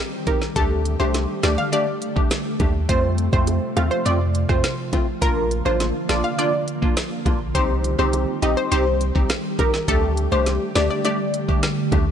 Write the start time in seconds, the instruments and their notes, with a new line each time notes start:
Already playing: ambient pad D#3 G3 C4 G4
0.27 synth stab C4 D#4 G4, synth pluck A#4, kick, closed hi-hat, high bongo, low bongo
0.42 snare
0.56 sub bass D2, ambient pad D3 A3, synth stab A3 D4 G4, synth pluck A4, kick, closed hi-hat
0.85 closed hi-hat
1.00 sub bass C2, synth stab A3 D4 G4, synth pluck C5, high bongo
1.14 snare, closed hi-hat, high bongo
1.43 sub bass D2, synth stab A3 D4 G4, synth pluck D5, snare, closed hi-hat, high bongo
1.58 synth pluck F5
1.72 synth stab A3 D4 G4, synth pluck D5, closed hi-hat
2.02 closed hi-hat
2.16 synth stab A3 D4 G4, kick
2.31 snare, closed hi-hat, high bongo
2.60 sub bass D#2, synth stab A3 D4 G4, kick, closed hi-hat, high bongo, low bongo
2.89 sub bass F2, ambient pad C3 F3 F4, synth stab A3 C4 F4, synth pluck C5, kick, closed hi-hat
3.18 closed hi-hat
3.33 sub bass F2, synth stab A3 C4 F4, synth pluck C5, kick, high bongo
3.47 closed hi-hat, high bongo
3.76 sub bass D#2, synth stab A3 C4 F4, synth pluck F5, closed hi-hat, high bongo, low bongo
3.91 synth pluck C5
4.05 sub bass F2, synth stab A3 C4 F4, synth pluck D5, closed hi-hat
4.35 closed hi-hat
4.49 sub bass F2, synth stab A3 C4 F4, synth pluck C5, kick, cross-stick
4.64 snare, closed hi-hat, high bongo
4.93 synth stab A3 C4 F4, kick, closed hi-hat, high bongo, low bongo
5.21 sub bass A#1, ambient pad D3 A#3, synth stab A#3 D4 F4, synth pluck A#4, kick, closed hi-hat
5.51 closed hi-hat
5.65 sub bass A1, synth stab A#3 D4 F4, synth pluck C5, high bongo
5.80 snare, closed hi-hat, high bongo
6.09 sub bass A#1, synth stab A#3 D4 F4, synth pluck D5, snare, closed hi-hat, high bongo
6.24 synth pluck F5
6.38 synth stab A#3 D4 F4, synth pluck D5, closed hi-hat
6.68 closed hi-hat
6.82 synth stab A#3 D4 F4, kick
6.97 snare, closed hi-hat, high bongo
7.25 sub bass A#1, synth stab A#3 D4 F4, kick, closed hi-hat, high bongo, low bongo
7.55 sub bass C2, ambient pad D#3 G3 C4 G4, synth stab C4 D#4 G4, synth pluck C5, kick, closed hi-hat
7.84 closed hi-hat
7.98 sub bass C2, synth stab C4 D#4 G4, synth pluck C5, high bongo
8.13 closed hi-hat, high bongo
8.42 sub bass A#1, synth stab C4 D#4 G4, synth pluck D#5, closed hi-hat, high bongo
8.57 synth pluck C5
8.71 sub bass C2, synth stab C4 D#4 G4, synth pluck C5, closed hi-hat
9.01 closed hi-hat
9.15 sub bass C2, synth stab C4 D#4 G4, kick
9.30 snare, closed hi-hat, high bongo
9.59 synth stab C4 D#4 G4, synth pluck A#4, kick, closed hi-hat, high bongo, low bongo
9.74 snare
9.88 sub bass D2, ambient pad D3 A3, synth stab A3 D4 G4, synth pluck A4, kick, closed hi-hat
10.17 closed hi-hat
10.32 sub bass C2, synth stab A3 D4 G4, synth pluck C5, high bongo
10.46 snare, closed hi-hat, high bongo
10.75 sub bass D2, synth stab A3 D4 G4, synth pluck D5, snare, closed hi-hat, high bongo
10.91 synth pluck D5
11.05 synth stab A3 D4 G4, synth pluck D5, closed hi-hat
11.34 closed hi-hat
11.48 synth stab A3 D4 G4, kick
11.63 snare, closed hi-hat, high bongo
11.92 sub bass D#2, synth stab A3 D4 G4, kick, closed hi-hat, high bongo, low bongo